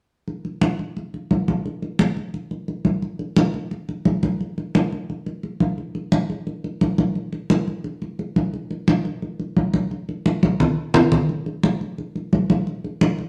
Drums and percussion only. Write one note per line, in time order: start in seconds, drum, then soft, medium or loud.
0.28 high conga soft
0.45 high conga soft
0.61 high conga medium
0.79 high conga soft
0.97 high conga soft
1.14 high conga soft
1.31 high conga medium
1.48 high conga medium
1.66 high conga soft
1.82 high conga soft
1.99 high conga medium
2.17 high conga soft
2.34 high conga soft
2.51 high conga soft
2.68 high conga soft
2.85 high conga medium
3.02 high conga soft
3.19 high conga soft
3.37 high conga medium
3.54 high conga soft
3.71 high conga soft
3.89 high conga soft
4.05 high conga medium
4.23 high conga medium
4.41 high conga soft
4.58 high conga soft
4.75 high conga medium
4.92 high conga soft
5.10 high conga soft
5.26 high conga soft
5.43 high conga soft
5.60 high conga medium
5.78 high conga soft
5.95 high conga soft
6.12 high conga medium
6.30 high conga soft
6.47 high conga soft
6.64 high conga soft
6.81 high conga medium
6.98 high conga medium
7.15 high conga soft
7.33 high conga soft
7.50 high conga medium
7.68 high conga soft
7.84 high conga soft
8.02 high conga soft
8.19 high conga soft
8.36 high conga medium
8.54 high conga soft
8.71 high conga soft
8.88 high conga medium
9.05 high conga soft
9.22 high conga soft
9.40 high conga soft
9.57 high conga medium
9.74 high conga medium
9.91 high conga soft
10.09 high conga soft
10.26 high conga medium
10.43 high conga loud
10.60 low conga medium
10.94 low conga loud
11.12 low conga medium
11.29 high conga soft
11.46 high conga soft
11.63 high conga medium
11.81 high conga soft
11.98 high conga soft
12.15 high conga soft
12.33 high conga medium
12.50 high conga medium
12.67 high conga soft
12.84 high conga soft
13.01 high conga medium
13.19 high conga soft